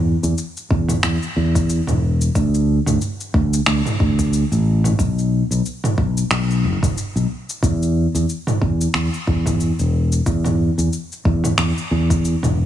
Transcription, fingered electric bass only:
Already playing: E2
0.23 E2
0.70 E2
1.03 E2
1.36 E2
1.88 E1
2.35 D2
2.87 D2
3.34 D2
3.67 D2
4.00 D2
4.52 A1
4.99 B1
5.51 B1
5.98 B1
6.31 B1
6.64 F#1
7.16 B1
7.63 E2
8.15 E2
8.61 E2
8.94 E2
9.28 E2
9.79 E1
10.26 E2
10.78 E2
11.25 E2
11.58 E2
11.91 E2
12.43 E1

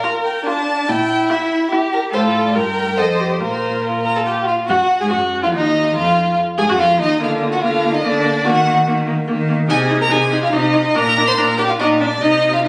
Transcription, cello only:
0.89 A#2
2.13 A2
2.56 G2
2.99 F2
3.41 A#2
4.69 F#2
5.00 G#2
5.11 F#2
5.44 F2
5.54 D#2
5.96 F2
6.58 G#2
6.69 F#2
6.80 F2
7.00 D#2
7.21 D3
7.64 D3
8.05 D3
8.47 D#3
8.88 D#3
9.29 D#3
9.70 C3
10.11 C3
10.53 C3
10.96 A#2
11.38 A#2
11.80 A#2
12.22 C3

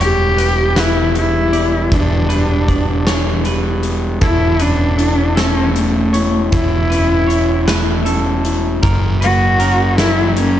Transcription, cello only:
0.01 G4
0.79 E4
1.18 E4
1.94 D4
4.23 E4
4.62 D4
5.40 C#4
5.77 A3
6.54 E4
9.23 F#4
9.99 E4
10.39 C#4

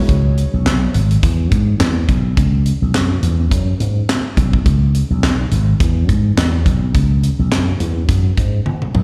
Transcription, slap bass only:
0.09 C#2
0.54 B1
0.66 B1
0.95 G#1
1.23 E2
1.52 G#2
1.80 E2
2.09 B1
2.37 C#2
2.82 B1
2.94 F#2
3.23 E2
3.52 F#2
3.80 G#2
4.37 B1
4.66 C#2
5.10 B1
5.23 B1
5.51 G#1
5.80 E2
6.09 G#2
6.38 E2
6.66 B1
6.95 C#2
7.39 B1
7.52 F#2
7.80 E2
8.09 F#2
8.37 G#2
8.94 B1

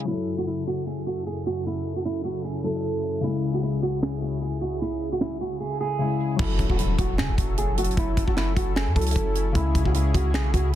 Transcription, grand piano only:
0.05 F#3 E4
0.11 A4
2.63 F#3 E4 A4
3.21 C#3 G#3
3.27 E4
5.98 C#3 G#3 E4
6.36 F#3 E4
6.42 A4
8.95 F#3 E4 A4
9.52 C#3 G#3
9.58 E4

